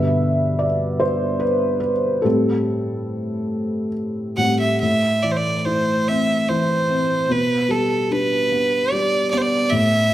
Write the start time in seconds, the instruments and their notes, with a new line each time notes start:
Already playing: felt piano G2 B2 D3 B4 E5
0.59 felt piano D5
1.00 felt piano C5
1.40 felt piano B4
1.80 felt piano B4
2.22 felt piano A2 G3 C4 A4
4.37 felt piano A2 G3 C4, fiddle F#5
4.59 fiddle E5
4.80 felt piano A2, fiddle E5
5.23 felt piano E3, fiddle D5
5.31 fiddle C5
5.37 fiddle D5
5.59 fiddle D5
5.65 felt piano E4, fiddle C5
6.08 felt piano C4, fiddle E5
6.49 felt piano E3, fiddle C5
6.89 felt piano C4
7.29 felt piano B2, fiddle B4
7.69 felt piano G3, fiddle A4
8.11 felt piano D4, fiddle B4
8.52 felt piano B3
8.92 felt piano G3, fiddle D5
9.30 felt piano B3, fiddle D5
9.38 fiddle C5 D5
9.70 felt piano A2, fiddle E5